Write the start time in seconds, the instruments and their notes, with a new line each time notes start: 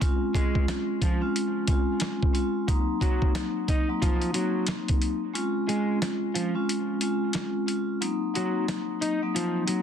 0.00 vibraphone G#3 C4 C#4 F4, kick, closed hi-hat
0.35 vibraphone G#3 C4 C#4 F4, clean electric guitar G#3 G#4, kick, closed hi-hat
0.55 kick
0.68 snare, closed hi-hat
1.02 clean electric guitar F3 F4, kick, closed hi-hat
1.21 vibraphone G#3 C4 C#4 F4
1.36 closed hi-hat
1.67 vibraphone G#3 C4 C#4 F4, kick, closed hi-hat
2.00 snare, closed hi-hat
2.23 kick
2.33 vibraphone G#3 C4 C#4 F4, closed hi-hat
2.67 vibraphone F#3 A#3 C4 D#4, kick, closed hi-hat
3.01 vibraphone F#3 A#3 C4 D#4, clean electric guitar F#3 F#4, kick, closed hi-hat
3.22 kick
3.35 snare, closed hi-hat
3.68 clean electric guitar D#4 D#5, kick, closed hi-hat
3.89 vibraphone F#3 A#3 C4 D#4
4.02 clean electric guitar F3 F4, kick, closed hi-hat
4.22 closed hi-hat
4.33 vibraphone F#3 A#3 C4 D#4, clean electric guitar F#3 F#4, closed hi-hat
4.67 snare, closed hi-hat
4.88 kick, closed hi-hat
5.02 closed hi-hat
5.33 vibraphone G#3 C4 C#4 F4, closed hi-hat
5.68 vibraphone G#3 C4 C#4 F4, clean electric guitar G#3 G#4, closed hi-hat
6.02 snare, closed hi-hat
6.34 clean electric guitar F3 F4, closed hi-hat
6.55 vibraphone G#3 C4 C#4 F4
6.69 closed hi-hat
7.01 vibraphone G#3 C4 C#4 F4, closed hi-hat
7.33 snare, closed hi-hat
7.66 vibraphone G#3 C4 C#4 F4, closed hi-hat
8.01 vibraphone F#3 A#3 C4 D#4, closed hi-hat
8.34 vibraphone F#3 A#3 C4 D#4, clean electric guitar F#3 F#4, closed hi-hat
8.68 snare, closed hi-hat
9.01 clean electric guitar D#4 D#5, closed hi-hat
9.22 vibraphone F#3 A#3 C4 D#4
9.35 clean electric guitar F3 F4, closed hi-hat
9.66 vibraphone F#3 A#3 C4 D#4, clean electric guitar F#3 F#4, closed hi-hat